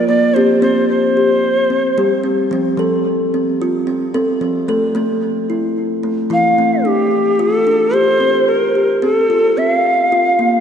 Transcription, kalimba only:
0.09 0.36 A#3 medium
0.36 0.59 C4 medium
0.36 0.63 G4 medium
0.62 0.85 C4 medium
1.17 1.71 G4 medium
1.70 1.98 C4 medium
1.98 2.20 G3 medium
1.98 2.25 G4 medium
2.24 2.47 C4 medium
2.51 2.74 F3 medium
2.51 2.79 C4 medium
2.77 3.01 F3 medium
2.77 3.33 A4 medium
3.34 3.61 C4 medium
3.62 3.88 F4 medium
3.87 4.13 C4 medium
4.14 4.37 C4 medium
4.14 4.41 A4 medium
4.41 4.64 F3 medium
4.41 4.68 C4 medium
4.68 4.91 A3 medium
4.68 4.96 A4 medium
4.95 5.18 A3 medium
4.95 5.50 C4 medium
5.50 6.04 E4 medium
6.03 6.31 A3 medium
6.30 6.53 E3 medium
6.30 6.58 E4 medium
6.58 6.81 A3 medium
6.58 6.85 C4 medium
6.85 7.39 D4 medium
7.39 7.66 F4 medium
7.67 7.94 D4 medium
7.94 8.21 G4 medium
8.20 8.75 C4 medium
8.75 9.02 G4 medium
9.02 9.29 C4 medium
9.30 9.57 F4 medium
9.57 10.11 C4 medium
10.12 10.39 F4 medium
10.39 10.60 A#3 medium

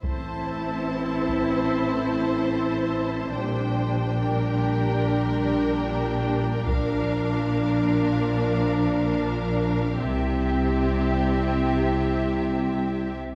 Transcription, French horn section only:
0.03 3.33 E3 soft
0.03 3.32 C4 soft
3.35 6.63 G3 soft
3.35 6.62 D4 soft
6.68 9.84 F3 soft
6.68 9.84 D4 soft
10.01 13.09 G3 soft
10.01 13.08 E4 soft

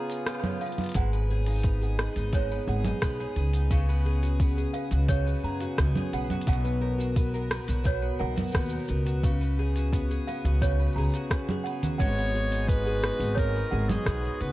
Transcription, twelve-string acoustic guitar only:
0.00 0.95 C#3 loud
0.00 0.61 B3 medium
0.00 0.25 F4 medium
0.00 1.30 G#4 medium
0.27 1.03 F4 medium
0.61 1.13 B3 medium
0.95 2.33 G#2 medium
1.13 1.64 B3 medium
1.30 1.81 G#4 medium
1.47 2.15 D#4 medium
1.64 1.99 B3 medium
1.82 2.68 G#4 medium
2.00 2.51 B3 medium
2.17 2.85 D#4 medium
2.34 3.79 G#2 medium
2.51 3.02 B3 medium
2.68 3.20 G#4 medium
2.86 3.52 D#4 medium
3.03 3.37 B3 medium
3.20 4.05 G#4 medium
3.37 3.88 B3 medium
3.54 3.78 D#4 medium
3.71 5.08 C#3 medium
3.89 4.40 B3 medium
4.06 4.56 G#4 medium
4.23 4.92 F#4 medium
4.40 4.74 B3 medium
4.58 5.43 G#4 medium
4.74 5.26 B3 medium
4.92 5.61 F#4 medium
5.09 6.54 C#3 medium
5.26 5.78 B3 medium
5.44 5.95 G#4 medium
5.61 6.30 F#4 medium
5.79 6.13 B3 medium
5.97 6.55 G#4 medium
6.13 6.64 B3 medium
6.31 6.98 F#4 medium
6.48 7.83 B2 loud
6.64 7.16 B3 medium
6.81 7.33 A#4 medium
6.98 7.67 F#4 medium
7.16 7.51 B3 medium
7.34 8.18 A#4 medium
7.51 8.02 B3 medium
7.68 8.36 F#4 medium
7.84 9.29 B2 medium
8.02 8.52 B3 medium
8.19 8.69 A#4 medium
8.36 9.05 F#4 medium
8.52 8.87 B3 medium
8.70 9.30 A#4 medium
8.88 9.41 B3 medium
9.06 9.62 F#4 medium
9.23 10.61 C#3 medium
9.41 9.92 B3 medium
9.59 10.10 G#4 medium
9.77 10.45 F#4 medium
9.93 10.28 B3 medium
10.11 10.97 G#4 medium
10.28 10.79 B3 medium
10.46 11.15 F#4 medium
10.63 12.07 C#3 medium
10.80 11.32 B3 medium
10.98 11.49 G#4 medium
11.15 11.83 F#4 medium
11.32 11.66 B3 medium
11.50 12.35 G#4 medium
11.66 12.18 B3 medium
11.84 12.38 F#4 medium
12.01 13.38 G#2 medium
12.18 12.69 B3 medium
12.35 12.86 G#4 medium
12.52 13.20 D#4 medium
12.70 13.04 B3 medium
12.86 13.72 G#4 medium
13.04 13.55 B3 medium
13.22 13.89 D#4 medium
13.39 14.52 G#2 medium
13.56 14.07 B3 medium
13.73 14.24 G#4 medium
13.90 14.52 D#4 medium
14.07 14.41 B3 medium
14.24 14.52 G#4 medium
14.41 14.52 B3 medium

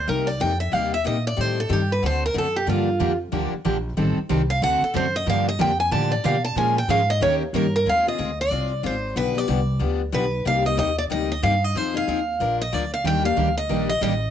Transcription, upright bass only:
0.08 0.39 C2 medium
0.41 0.72 F2 medium
0.73 1.04 D#2 medium
1.05 1.37 A#2 medium
1.38 1.69 A2 medium
1.70 2.02 G2 medium
2.02 2.34 D2 medium
2.35 2.66 F#2 medium
2.67 2.99 G2 medium
3.00 3.32 F2 medium
3.32 3.51 D2 medium
3.52 muted upright bass stroke soft
3.65 3.96 A#1 medium
3.97 4.16 A1 medium
4.17 muted upright bass stroke soft
4.30 4.61 C2 medium
4.62 4.80 D2 medium
4.81 muted upright bass stroke soft
4.95 5.26 F#2 medium
5.27 5.58 G2 medium
5.59 5.91 F2 loud
5.91 6.23 A2 medium
6.24 6.55 B2 medium
6.56 6.88 A#2 medium
6.88 7.20 G#2 loud
7.21 7.53 D#2 medium
7.53 7.85 G2 medium
7.86 8.17 D#2 medium
8.19 8.50 D2 medium
8.51 8.82 C2 medium
8.84 9.15 G#1 medium
9.16 9.47 B1 medium
9.48 9.80 C2 medium
9.80 10.12 D2 medium
10.13 10.44 B1 medium
10.45 10.77 C2 medium
10.78 11.09 D#2 medium
11.11 11.42 D2 medium
11.43 11.74 G2 medium
11.75 12.06 F2 medium
12.08 12.39 D#2 medium
12.40 12.71 A#1 medium
12.73 13.04 D2 medium
13.04 13.36 D#2 medium
13.37 13.68 D2 medium
13.70 14.01 A#1 medium
14.01 14.30 A1 medium

